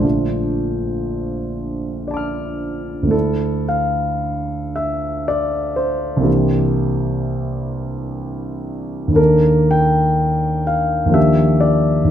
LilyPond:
<<
  \new Staff \with { instrumentName = "Grand piano" } { \time 3/4 \key d \minor \tempo 4 = 60 << { r2 <d'' a'' d''' f'''>4 | r2. | r2. | r2. | } \\ { c''2. | a'8 f''4 e''8 d''8 c''8~ | c''2. | bes'8 g''4 f''8 e''8 d''8 | } >> }
  \new Staff \with { instrumentName = "Grand piano" } { \time 3/4 \key d \minor <bes,, d a d' f'>2. | <d, d a d' e'>2. | <c, e bes d' g'>2. | <ees, ees bes d' a'>2 <ees, f bes d' g'>4 | }
>>